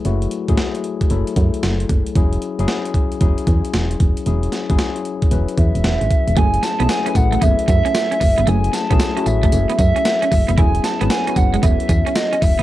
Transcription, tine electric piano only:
X:1
M:4/4
L:1/16
Q:"Swing 16ths" 1/4=114
K:F#m
V:1 name="Tine electric piano"
[F,A,EF]3 [F,A,EG]4- [F,A,EG] [F,A,EA]6- [F,A,EA] z | [F,CEG]3 [F,CEG]4- [F,CEG] [F,CEG]6- [F,CEG] z | [F,CEG]3 [F,CEG]4- [F,CEG] [F,CEB]6- [F,CEB] z | [F,A,CEG]3 [F,A,CEG]2 [F,A,CEB]6- [F,A,CEB] z4 |
[F,A,CEG]3 [F,A,CEG]2 [F,A,CEF]6- [F,A,CEF] z4 | [F,B,CEG]3 [F,B,CEB]2 [F,B,CEF]6- [F,B,CEF] z4 |]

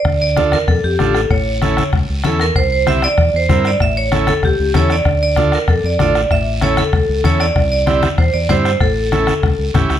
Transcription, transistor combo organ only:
X:1
M:4/4
L:1/8
Q:1/4=192
K:Dm
V:1 name="Transistor combo organ"
z2 [DFA] z3 [DFA] z | z2 [^CEA] z3 [CEA] z | z2 [CEG] z3 [CEB] z | z2 [^CEA] z3 [CEA] z |
z2 [DFA] z3 [DFA] z | z2 [^CEA] z3 [CEA] z | z2 [CEG] z3 [CEG] z | z2 [^CEA] z3 [CEG] z |]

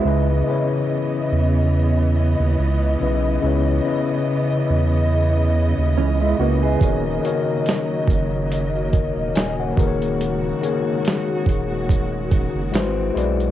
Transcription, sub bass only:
X:1
M:4/4
L:1/16
Q:"Swing 16ths" 1/4=71
K:C#dor
V:1 name="Sub bass" clef=bass
C,,2 z4 E,,4- E,, D,, C,,2 B,,,2 | C,,2 z4 E,,4- E,, D,, C,,2 C,,2 | D,,,2 z4 F,,,4- F,,, E,,, D,,,2 D,,,2- | D,,,2 z4 D,,,4- D,,, F,,, G,,,2 B,,,2 |]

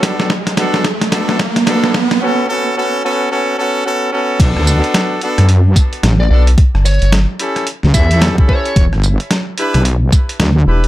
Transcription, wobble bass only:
X:1
M:4/4
L:1/16
Q:"Swing 16ths" 1/4=110
K:Bm
V:1 name="Wobble bass" clef=bass
z16 | z16 | B,,, D,,2 z4 F,,3 z2 A,,,2 z2 | z8 z C,, E,,3 z3 |
E,,, G,,,2 z4 B,,,3 z2 D,,2 z2 |]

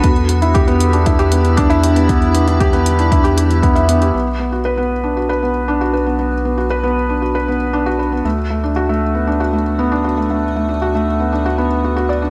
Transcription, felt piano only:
X:1
M:4/4
L:1/16
Q:1/4=117
K:Bm
V:1 name="Felt piano"
B, z B, E G B, z D E G B, z D E G B, | B, z B, E G B, z D E G G z B, e B, G | B, z B, F B B, z D F B B, z D F B B, | B, z B, F B B, z D F B B, z D F B B, |
A, z A, D F A, z B, D F A, z B, D F A, | A, z A, D F A, z B, D F B, z F F d D |]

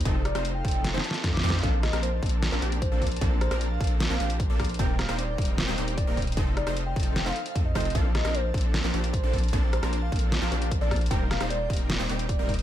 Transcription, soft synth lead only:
X:1
M:4/4
L:1/16
Q:1/4=152
K:Bb
V:1 name="Soft synth lead"
z2 d2 z g4 a3 z d'2 z | f2 e2 c3 z4 z c2 z2 | z2 c2 z f3 z f3 z d2 z | g2 f2 d3 z4 z d2 z2 |
z2 d2 z g4 f3 z e3 | f2 e2 c3 z4 z c2 z2 | z2 c2 z f3 z f3 z d2 z | g2 f2 d3 z4 z d2 z2 |]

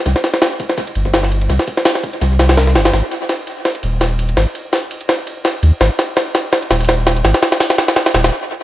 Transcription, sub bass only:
X:1
M:4/4
L:1/8
Q:"Swing 16ths" 1/4=167
K:Cm
V:1 name="Sub bass" clef=bass
C,, z4 G,,,3 | C,, z3 C,,3 G,,, | A,,, z4 E,,,3 | A,,, z6 E,, |
A,,, z4 E,,,3 | A,,, z4 E,,, z2 |]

